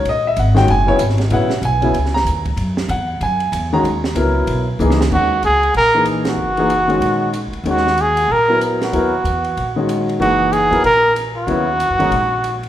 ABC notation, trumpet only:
X:1
M:4/4
L:1/8
Q:"Swing" 1/4=189
K:Ebphr
V:1 name="Trumpet"
z8 | z8 | z8 | z8 |
G2 A2 B2 z G- | G6- G z | G2 A2 B2 z G- | G4- G z3 |
G2 A2 B2 z G- | G6- G z |]